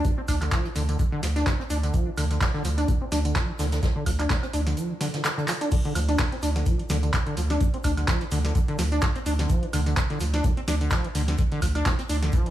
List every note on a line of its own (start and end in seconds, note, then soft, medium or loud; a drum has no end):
0.05 0.12 D2 medium
0.05 kick loud
0.05 closed hi-hat medium
0.05 tambourine soft
0.05 shaker medium
0.18 0.21 C4 medium
0.28 0.49 D2 medium
0.28 0.36 D4 loud
0.28 kick medium
0.28 open hi-hat loud
0.28 tambourine medium
0.28 high woodblock medium
0.28 shaker medium
0.41 0.53 D3 medium
0.41 snare soft
0.41 clap soft
0.41 closed hi-hat medium
0.41 tambourine soft
0.41 high woodblock medium
0.52 0.67 F3 loud
0.52 kick loud
0.52 snare loud
0.52 clap loud
0.52 closed hi-hat medium
0.52 tambourine soft
0.52 shaker medium
0.65 0.69 D#3 loud
0.65 closed hi-hat soft
0.75 0.96 D2 medium
0.75 0.83 D3 loud
0.75 open hi-hat loud
0.75 tambourine medium
0.75 shaker medium
0.89 0.97 D3 medium
0.89 closed hi-hat medium
0.89 tambourine soft
0.99 1.04 D3 medium
0.99 kick loud
0.99 closed hi-hat medium
0.99 tambourine soft
0.99 shaker medium
1.12 1.21 D3 loud
1.23 1.43 D2 medium
1.23 1.27 F3 medium
1.23 snare medium
1.23 open hi-hat loud
1.23 tambourine medium
1.23 shaker medium
1.36 1.48 D4 loud
1.36 snare soft
1.36 closed hi-hat medium
1.36 tambourine soft
1.46 1.54 D2 medium
1.46 kick loud
1.46 snare loud
1.46 clap loud
1.46 closed hi-hat soft
1.46 tambourine soft
1.46 shaker medium
1.60 1.63 C4 medium
1.60 closed hi-hat soft
1.70 1.91 D2 medium
1.70 1.77 D4 loud
1.70 open hi-hat loud
1.70 tambourine medium
1.70 shaker medium
1.83 1.95 D3 medium
1.83 closed hi-hat medium
1.83 closed hi-hat soft
1.83 tambourine soft
1.94 2.08 F3 loud
1.94 kick loud
1.94 closed hi-hat medium
1.94 tambourine soft
1.94 shaker medium
2.07 2.10 D#3 loud
2.17 2.38 D2 medium
2.17 2.25 D3 loud
2.17 open hi-hat loud
2.17 tambourine medium
2.17 high woodblock medium
2.17 shaker medium
2.31 2.39 D3 medium
2.31 snare soft
2.31 closed hi-hat medium
2.31 tambourine soft
2.41 2.45 D3 medium
2.41 kick loud
2.41 snare loud
2.41 clap loud
2.41 closed hi-hat medium
2.41 tambourine soft
2.41 shaker medium
2.54 2.63 D3 loud
2.54 snare soft
2.64 2.85 D2 medium
2.64 2.69 F3 medium
2.64 open hi-hat loud
2.64 tambourine medium
2.64 shaker medium
2.77 2.90 D4 loud
2.77 snare soft
2.77 closed hi-hat medium
2.77 tambourine soft
2.88 2.95 D2 medium
2.88 kick loud
2.88 closed hi-hat medium
2.88 tambourine soft
2.88 shaker medium
3.01 3.05 C4 medium
3.12 3.32 D2 medium
3.12 3.19 D4 loud
3.12 snare medium
3.12 open hi-hat loud
3.12 tambourine medium
3.12 shaker medium
3.25 3.37 D3 medium
3.25 closed hi-hat medium
3.25 tambourine soft
3.35 3.50 F3 loud
3.35 kick loud
3.35 snare loud
3.35 clap loud
3.35 closed hi-hat medium
3.35 tambourine soft
3.35 shaker medium
3.49 3.52 D#3 loud
3.59 3.80 D2 medium
3.59 3.66 D3 loud
3.59 snare loud
3.59 open hi-hat medium
3.59 tambourine medium
3.59 shaker medium
3.72 3.81 D3 medium
3.72 snare loud
3.72 closed hi-hat medium
3.72 tambourine soft
3.72 shaker medium
3.83 3.87 D3 medium
3.83 kick loud
3.83 snare loud
3.83 closed hi-hat medium
3.83 tambourine soft
3.83 shaker medium
3.96 4.04 D3 loud
4.06 4.27 D2 medium
4.06 4.11 F3 medium
4.06 kick medium
4.06 open hi-hat loud
4.06 tambourine medium
4.06 high woodblock medium
4.06 shaker medium
4.19 4.31 D4 loud
4.19 snare soft
4.19 clap soft
4.19 closed hi-hat medium
4.19 tambourine soft
4.19 high woodblock medium
4.30 4.37 D2 medium
4.30 kick loud
4.30 snare loud
4.30 clap loud
4.30 closed hi-hat medium
4.30 tambourine soft
4.30 shaker medium
4.43 4.47 C4 medium
4.43 closed hi-hat soft
4.43 high woodblock medium
4.53 4.74 D2 medium
4.53 4.61 D4 loud
4.53 open hi-hat loud
4.53 tambourine medium
4.53 shaker medium
4.67 4.79 D3 medium
4.67 snare medium
4.67 closed hi-hat medium
4.67 tambourine soft
4.77 4.92 F3 loud
4.77 closed hi-hat medium
4.77 tambourine soft
4.77 shaker medium
4.90 4.94 D#3 loud
5.01 5.08 D3 loud
5.01 snare medium
5.01 open hi-hat loud
5.01 tambourine medium
5.01 shaker medium
5.14 5.23 D3 medium
5.14 snare medium
5.14 closed hi-hat medium
5.14 tambourine soft
5.24 5.29 D3 medium
5.24 snare loud
5.24 clap loud
5.24 closed hi-hat medium
5.24 tambourine soft
5.24 shaker medium
5.38 5.46 D3 loud
5.38 closed hi-hat soft
5.48 5.53 F3 medium
5.48 clap medium
5.48 open hi-hat loud
5.48 tambourine medium
5.48 shaker medium
5.61 5.70 D4 loud
5.61 closed hi-hat medium
5.61 closed hi-hat soft
5.61 tambourine soft
5.71 5.76 D3 medium
5.71 kick loud
5.71 closed hi-hat medium
5.71 crash loud
5.71 tambourine soft
5.71 shaker medium
5.85 5.94 D3 loud
5.85 closed hi-hat soft
5.95 6.16 D2 medium
5.95 6.00 F3 medium
5.95 open hi-hat loud
5.95 tambourine medium
5.95 high woodblock medium
5.95 shaker medium
6.09 6.21 D4 medium
6.09 snare soft
6.09 closed hi-hat soft
6.09 tambourine soft
6.18 6.26 D2 medium
6.18 kick loud
6.18 snare loud
6.18 clap loud
6.18 closed hi-hat medium
6.18 tambourine soft
6.18 high conga medium
6.18 shaker medium
6.32 6.36 C4 medium
6.32 snare soft
6.32 closed hi-hat soft
6.42 6.63 D2 medium
6.42 6.50 D4 loud
6.42 open hi-hat loud
6.42 tambourine medium
6.42 shaker medium
6.55 6.68 D3 medium
6.55 snare soft
6.55 snare medium
6.55 closed hi-hat soft
6.55 tambourine soft
6.66 6.81 F3 loud
6.66 kick loud
6.66 closed hi-hat medium
6.66 tambourine soft
6.66 shaker loud
6.79 6.83 D#3 loud
6.79 closed hi-hat soft
6.89 7.10 D2 medium
6.89 6.97 D3 loud
6.89 snare medium
6.89 open hi-hat loud
6.89 tambourine medium
6.89 high conga soft
6.89 shaker medium
7.03 7.12 D3 medium
7.03 closed hi-hat soft
7.03 tambourine soft
7.13 7.18 D3 medium
7.13 kick loud
7.13 snare loud
7.13 clap loud
7.13 closed hi-hat medium
7.13 tambourine soft
7.13 shaker medium
7.26 7.35 D3 loud
7.26 closed hi-hat soft
7.37 7.58 D2 medium
7.37 7.41 F3 medium
7.37 open hi-hat loud
7.37 tambourine medium
7.37 shaker medium
7.50 7.62 D4 loud
7.50 snare medium
7.50 closed hi-hat soft
7.50 tambourine soft
7.50 high conga medium
7.61 7.68 D2 medium
7.61 kick loud
7.61 closed hi-hat medium
7.61 tambourine soft
7.61 shaker medium
7.74 7.77 C4 medium
7.74 closed hi-hat soft
7.84 8.05 D2 loud
7.84 7.92 D4 loud
7.84 kick medium
7.84 open hi-hat loud
7.84 tambourine medium
7.84 high woodblock medium
7.84 shaker medium
7.97 8.10 D3 medium
7.97 snare soft
7.97 closed hi-hat soft
7.97 tambourine soft
7.97 high woodblock medium
8.07 8.23 F3 loud
8.07 kick loud
8.07 snare loud
8.07 clap loud
8.07 closed hi-hat medium
8.07 tambourine soft
8.07 high conga medium
8.07 shaker medium
8.21 8.25 D#3 loud
8.21 closed hi-hat soft
8.31 8.52 D2 loud
8.31 8.39 D3 loud
8.31 open hi-hat loud
8.31 tambourine medium
8.31 shaker medium
8.45 8.53 D3 medium
8.45 snare medium
8.45 closed hi-hat soft
8.45 tambourine soft
8.55 8.60 D3 medium
8.55 kick loud
8.55 closed hi-hat medium
8.55 tambourine soft
8.55 shaker medium
8.68 8.77 D3 loud
8.68 closed hi-hat soft
8.79 8.99 D2 medium
8.79 8.83 F3 medium
8.79 snare medium
8.79 open hi-hat loud
8.79 tambourine medium
8.79 high conga soft
8.79 shaker medium
8.92 9.04 D4 loud
8.92 snare soft
8.92 closed hi-hat soft
8.92 tambourine soft
9.02 9.10 D2 medium
9.02 kick loud
9.02 snare loud
9.02 clap loud
9.02 closed hi-hat medium
9.02 tambourine soft
9.02 shaker medium
9.16 9.19 C4 medium
9.16 closed hi-hat soft
9.26 9.46 D2 medium
9.26 9.33 D4 loud
9.26 open hi-hat loud
9.26 tambourine medium
9.26 shaker medium
9.39 9.51 D3 medium
9.39 snare medium
9.39 closed hi-hat soft
9.39 tambourine soft
9.39 high conga medium
9.50 9.64 F3 loud
9.50 kick loud
9.50 closed hi-hat medium
9.50 tambourine soft
9.50 shaker medium
9.63 9.66 D#3 loud
9.63 closed hi-hat soft
9.73 9.94 D2 loud
9.73 9.80 D3 loud
9.73 open hi-hat loud
9.73 tambourine medium
9.73 high woodblock medium
9.73 shaker medium
9.86 9.95 D3 medium
9.86 snare soft
9.86 closed hi-hat soft
9.86 tambourine soft
9.97 10.01 D3 medium
9.97 kick loud
9.97 snare loud
9.97 clap loud
9.97 closed hi-hat medium
9.97 tambourine soft
9.97 high conga medium
9.97 shaker medium
10.10 10.19 D3 loud
10.10 snare soft
10.10 closed hi-hat soft
10.20 10.41 D2 medium
10.20 10.25 F3 medium
10.20 open hi-hat loud
10.20 tambourine medium
10.20 shaker medium
10.34 10.46 D4 loud
10.34 snare medium
10.34 snare soft
10.34 closed hi-hat soft
10.34 tambourine soft
10.44 10.51 D2 medium
10.44 kick loud
10.44 closed hi-hat medium
10.44 tambourine soft
10.44 shaker medium
10.57 10.61 C4 medium
10.57 closed hi-hat soft
10.68 10.88 D2 medium
10.68 10.75 D4 loud
10.68 snare medium
10.68 open hi-hat loud
10.68 tambourine medium
10.68 high conga soft
10.68 shaker medium
10.81 10.93 D3 medium
10.81 closed hi-hat soft
10.81 tambourine soft
10.91 11.06 F3 loud
10.91 kick loud
10.91 snare loud
10.91 clap loud
10.91 closed hi-hat medium
10.91 tambourine soft
10.91 shaker medium
11.04 11.08 D#3 loud
11.04 closed hi-hat soft
11.15 11.35 D2 medium
11.15 11.22 D3 loud
11.15 open hi-hat loud
11.15 tambourine medium
11.15 shaker medium
11.28 11.37 D3 medium
11.28 snare medium
11.28 tambourine soft
11.28 high conga medium
11.38 11.43 D3 medium
11.38 kick loud
11.38 closed hi-hat medium
11.38 tambourine soft
11.38 shaker medium
11.52 11.60 D3 loud
11.52 closed hi-hat soft
11.62 11.83 D2 loud
11.62 11.67 F3 medium
11.62 kick medium
11.62 open hi-hat loud
11.62 tambourine medium
11.62 high woodblock medium
11.62 shaker medium
11.75 11.87 D4 loud
11.75 snare soft
11.75 closed hi-hat soft
11.75 tambourine soft
11.75 high woodblock medium
11.86 11.93 D2 medium
11.86 kick loud
11.86 snare loud
11.86 clap loud
11.86 closed hi-hat medium
11.86 tambourine soft
11.86 high conga medium
11.86 shaker medium
11.99 12.02 C4 medium
11.99 closed hi-hat soft
12.09 12.30 D2 medium
12.09 12.17 D4 loud
12.09 open hi-hat loud
12.09 tambourine medium
12.09 shaker medium
12.23 12.34 D3 medium
12.23 snare medium
12.23 closed hi-hat soft
12.23 tambourine soft
12.32 12.48 F3 loud
12.32 kick loud
12.32 closed hi-hat medium
12.32 tambourine soft
12.32 shaker medium
12.46 12.50 D#3 loud
12.46 closed hi-hat soft